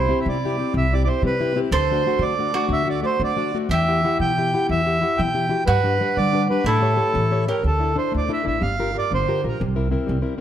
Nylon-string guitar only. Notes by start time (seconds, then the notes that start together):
0.09 C4 E4 G4
0.29 G3
0.45 C4 E4 G4
0.58 C4 E4 G4
0.77 C3
0.93 C4 E4 G4
1.08 C4 E4 G4
1.24 G3
1.40 C4 E4 G4
1.56 C4 E4 G4
1.73 D3
1.92 A3 D4 F#4
2.06 A3 D4 F#4
2.22 A3
2.39 A3 D4 F#4
2.54 A3 D4 F#4
2.69 D3
2.85 A3 D4 F#4
3.02 A3 D4 F#4
3.20 A3
3.37 A3 D4 F#4
3.54 A3 D4 F#4
3.71 E3
3.88 E4 G4 F#5
4.04 E4 G4 F#5
4.21 B2
4.38 E4 G4
4.54 E4 G4 F#5
4.72 E3
4.86 E4 G4 F#5
5.01 E4 G4 F#5
5.18 B2
5.35 E4 G4
5.49 E4 F#4 G4
5.67 G3
5.83 G3 D4 B4
6.01 G3 D4 B4
6.16 D3
6.33 G3 D4 B4
6.50 D4 G4 B4
6.65 A3
6.81 G4 A4 C#5
6.97 G4 A4 C#5
7.13 E3
7.31 G4 A4 C#5
7.48 G4 A4 C#5
7.63 D3
7.79 D4 E4 A4
7.96 D4 E4 A4
8.12 A3
8.29 D4 E4 A4
8.45 D4 E4 A4
8.61 G3
8.79 F4 G4 A#4
8.94 F4 G4 A#4
9.11 D3
9.28 F4 G4 A#4
9.44 F4 G4 A#4
9.60 C3
9.75 C4 E4 A#4
9.91 C4 E4 A#4
10.06 G3
10.22 C4 E4 A#4
10.38 C4